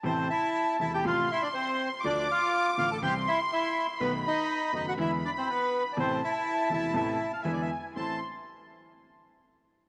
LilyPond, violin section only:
\new Staff \with { instrumentName = "Violin section" } { \time 4/4 \key a \minor \tempo 4 = 122 a''2 c'''2 | d'''2 c'''2 | b''2 b''2 | a''2. gis''4 |
c'''8 r2. r8 | }